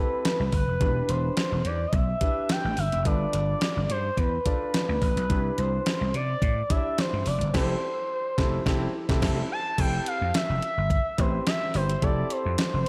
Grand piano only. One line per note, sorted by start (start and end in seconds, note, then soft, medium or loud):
0.00 0.40 C4 medium
0.00 0.40 E4 medium
0.00 0.40 G4 medium
0.00 0.40 A4 medium
0.80 1.37 D4 medium
0.80 1.37 E4 medium
0.80 1.37 G4 medium
0.80 1.37 B4 medium
2.21 2.64 D4 medium
2.21 2.64 E4 medium
2.21 2.64 G4 medium
2.21 2.64 B4 medium
3.05 3.61 D4 medium
3.05 3.62 F4 medium
3.05 3.62 A4 medium
3.05 3.62 B4 medium
4.45 4.88 D4 medium
4.45 4.89 F4 medium
4.45 4.89 A4 medium
4.45 4.89 D5 medium
5.29 5.86 D4 medium
5.29 5.86 E4 medium
5.29 5.86 G4 medium
5.29 5.86 B4 medium
6.70 7.13 D4 medium
6.70 7.13 E4 medium
6.70 7.13 G4 medium
6.70 6.77 C#5 medium
6.77 7.16 D5 medium
7.54 7.73 C4 loud
7.54 7.73 E4 loud
7.54 7.73 G4 loud
7.54 7.73 A4 loud
8.37 8.57 C4 medium
8.37 8.57 E4 medium
8.37 8.57 G4 loud
8.37 8.58 A4 loud
8.66 8.85 C4 loud
8.66 8.85 E4 loud
8.66 8.86 G4 loud
8.66 8.86 A4 medium
9.09 9.20 C4 medium
9.09 9.20 E4 loud
9.09 9.20 G4 loud
9.09 9.20 A4 medium
9.22 9.41 C4 loud
9.22 9.41 E4 loud
9.22 9.41 G4 loud
9.22 9.42 A4 loud
9.78 10.34 C4 medium
9.78 10.34 E4 medium
9.78 10.35 G4 medium
9.78 10.35 A4 medium
11.18 11.46 C4 medium
11.18 11.46 E4 medium
11.18 11.47 G4 medium
11.18 11.47 B4 medium
11.74 11.89 C4 medium
11.74 11.89 E4 medium
11.74 11.89 G4 medium
11.74 11.90 B4 medium
12.02 12.59 C4 medium
12.02 12.59 E4 medium
12.02 12.59 G4 medium
12.02 12.59 A4 medium